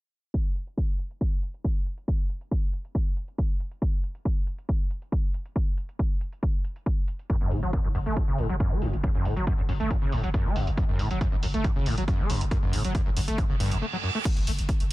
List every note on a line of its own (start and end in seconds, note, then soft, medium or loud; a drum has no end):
0.34 kick loud
0.34 closed hi-hat medium
0.56 closed hi-hat medium
0.67 closed hi-hat medium
0.77 kick loud
0.77 closed hi-hat medium
0.99 closed hi-hat loud
1.11 closed hi-hat medium
1.21 kick loud
1.21 closed hi-hat medium
1.43 closed hi-hat medium
1.54 closed hi-hat medium
1.64 kick loud
1.64 closed hi-hat medium
1.86 closed hi-hat medium
1.98 closed hi-hat medium
2.08 kick loud
2.08 closed hi-hat medium
2.30 closed hi-hat loud
2.41 closed hi-hat medium
2.51 kick loud
2.51 closed hi-hat medium
2.73 closed hi-hat medium
2.85 closed hi-hat medium
2.95 kick loud
2.95 closed hi-hat medium
3.17 closed hi-hat medium
3.28 closed hi-hat medium
3.38 kick loud
3.38 closed hi-hat medium
3.60 closed hi-hat medium
3.71 closed hi-hat medium
3.82 kick loud
3.82 closed hi-hat medium
4.04 closed hi-hat medium
4.15 closed hi-hat medium
4.25 kick loud
4.25 closed hi-hat medium
4.47 closed hi-hat medium
4.58 closed hi-hat medium
4.69 kick loud
4.69 closed hi-hat medium
4.91 closed hi-hat medium
5.02 closed hi-hat medium
5.12 kick loud
5.12 closed hi-hat medium
5.34 closed hi-hat medium
5.46 closed hi-hat medium
5.56 kick loud
5.56 closed hi-hat medium
5.78 closed hi-hat medium
5.89 closed hi-hat medium
5.99 kick loud
5.99 closed hi-hat medium
6.21 closed hi-hat medium
6.32 closed hi-hat medium
6.43 kick loud
6.43 closed hi-hat medium
6.64 closed hi-hat medium
6.76 closed hi-hat medium
6.86 kick loud
6.86 closed hi-hat medium
7.08 closed hi-hat medium
7.19 closed hi-hat medium
7.30 7.36 F#2 loud
7.30 kick loud
7.30 closed hi-hat medium
7.41 7.51 F#1 medium
7.41 7.53 F#2 loud
7.51 7.62 F#1 loud
7.51 7.61 A2 loud
7.51 open hi-hat loud
7.63 7.73 F#1 medium
7.63 7.71 F#3 medium
7.63 closed hi-hat medium
7.73 7.79 F#2 loud
7.73 kick loud
7.73 closed hi-hat medium
7.84 7.94 F#1 medium
7.84 7.88 F#2 medium
7.95 8.06 F#1 medium
7.95 7.99 F#2 medium
7.95 open hi-hat loud
8.06 8.16 F#1 medium
8.06 8.18 A3 loud
8.06 closed hi-hat medium
8.16 8.23 E2 loud
8.16 kick loud
8.16 closed hi-hat medium
8.28 8.38 F#1 medium
8.28 8.40 C#3 medium
8.38 8.49 F#1 loud
8.38 8.48 A2 loud
8.38 open hi-hat loud
8.49 8.60 F#1 medium
8.49 8.55 F#3 loud
8.49 closed hi-hat medium
8.60 8.73 F#2 loud
8.60 kick loud
8.60 closed hi-hat medium
8.71 8.81 F#1 medium
8.71 8.83 A3 medium
8.82 8.92 F#1 loud
8.82 8.94 F#2 loud
8.82 open hi-hat loud
8.93 8.96 F#1 medium
8.93 9.03 F#1 medium
8.93 closed hi-hat medium
9.03 9.10 F#2 loud
9.03 kick loud
9.03 closed hi-hat medium
9.15 9.25 F#1 medium
9.15 9.27 F#2 loud
9.25 9.36 F#1 loud
9.25 9.35 A2 loud
9.25 open hi-hat loud
9.36 9.47 F#1 medium
9.36 9.45 F#3 medium
9.36 closed hi-hat medium
9.47 9.53 F#2 loud
9.47 kick loud
9.47 closed hi-hat medium
9.58 9.68 F#1 medium
9.58 9.62 F#2 medium
9.69 9.80 F#1 loud
9.69 9.72 F#2 medium
9.69 open hi-hat loud
9.80 9.90 F#1 medium
9.80 9.92 A3 loud
9.80 closed hi-hat medium
9.90 9.97 E2 loud
9.90 kick loud
9.90 closed hi-hat medium
10.02 10.12 F#1 medium
10.02 10.14 C#3 medium
10.12 10.23 F#1 loud
10.12 10.22 A2 loud
10.12 open hi-hat medium
10.23 10.34 F#1 medium
10.23 10.29 F#3 loud
10.23 closed hi-hat medium
10.34 10.47 F#2 loud
10.34 kick loud
10.34 closed hi-hat medium
10.45 10.55 F#1 medium
10.45 10.57 A3 medium
10.56 10.67 F#1 loud
10.56 10.69 F#2 loud
10.56 open hi-hat loud
10.67 10.71 F#1 medium
10.67 10.77 F#1 medium
10.67 closed hi-hat medium
10.77 10.84 F#2 loud
10.77 kick loud
10.77 closed hi-hat medium
10.89 10.99 F#1 medium
10.89 11.01 F#2 loud
10.99 11.10 F#1 loud
10.99 11.09 A2 loud
10.99 open hi-hat loud
11.11 11.21 F#1 medium
11.11 11.19 F#3 medium
11.11 closed hi-hat medium
11.21 11.27 F#2 loud
11.21 kick loud
11.21 closed hi-hat medium
11.32 11.42 F#1 medium
11.32 11.36 F#2 medium
11.43 11.53 F#1 medium
11.43 11.46 F#2 medium
11.43 open hi-hat loud
11.54 11.64 F#1 medium
11.54 11.66 A3 loud
11.54 closed hi-hat medium
11.64 11.71 E2 loud
11.64 kick loud
11.64 closed hi-hat medium
11.76 11.86 F#1 medium
11.76 11.88 C#3 medium
11.86 11.97 F#1 loud
11.86 11.96 A2 loud
11.86 open hi-hat medium
11.98 12.08 F#1 medium
11.98 12.03 F#3 loud
11.98 closed hi-hat medium
12.08 12.21 F#2 loud
12.08 kick loud
12.08 closed hi-hat medium
12.19 12.29 F#1 medium
12.19 12.31 A3 medium
12.30 12.41 F#1 loud
12.30 12.43 F#2 loud
12.30 open hi-hat loud
12.41 12.51 F#1 medium
12.41 12.45 F#1 medium
12.41 closed hi-hat medium
12.51 12.58 F#2 loud
12.51 kick loud
12.51 closed hi-hat medium
12.63 12.73 F#1 medium
12.63 12.75 F#2 loud
12.73 12.84 F#1 loud
12.73 12.83 A2 loud
12.73 open hi-hat loud
12.85 12.95 F#1 medium
12.85 12.93 F#3 medium
12.85 closed hi-hat medium
12.95 13.01 F#2 loud
12.95 kick loud
12.95 closed hi-hat medium
13.06 13.16 F#1 medium
13.06 13.10 F#2 medium
13.16 13.27 F#1 loud
13.16 13.20 F#2 medium
13.16 open hi-hat loud
13.28 13.38 F#1 medium
13.28 13.40 A3 loud
13.28 closed hi-hat medium
13.38 13.45 E2 loud
13.38 kick loud
13.38 closed hi-hat medium
13.38 reverse cymbal medium
13.50 13.59 F#1 medium
13.50 13.55 C#3 medium
13.60 13.71 F#1 medium
13.60 13.73 G2 loud
13.60 open hi-hat loud
13.71 13.82 F#1 medium
13.71 13.77 F#2 loud
13.71 closed hi-hat medium
13.82 13.86 A3 medium
13.93 13.97 F#3 loud
14.03 14.10 F#2 medium
14.15 14.18 A3 loud
14.25 kick loud
14.25 closed hi-hat loud
14.25 crash medium
14.37 14.46 F#1 medium
14.37 closed hi-hat medium
14.47 14.58 F#1 loud
14.47 open hi-hat loud
14.58 14.69 F#1 medium
14.58 closed hi-hat medium
14.69 kick loud
14.69 closed hi-hat medium
14.80 14.90 F#1 medium
14.80 closed hi-hat medium